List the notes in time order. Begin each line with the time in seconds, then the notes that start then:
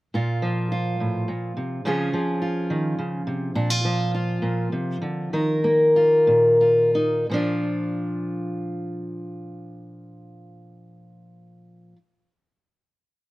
0.14 A#2 F4
0.42 F3
0.72 F4
1.00 A2
1.28 A#2
1.57 C3
1.85 C#3 F3 C#4 F4 G#4
2.13 F3
2.42 F4
2.70 D#3
2.99 C#3
3.27 C3
3.55 A#2 D4
3.70 F4
3.85 F3
4.14 F4
4.42 A#2
4.72 C3
5.02 D3
5.33 D#3 A#4
5.64 A#3
5.96 F4
6.27 A#2
6.61 F4
6.95 D#4
7.30 A#2 F3 D4
7.35 F4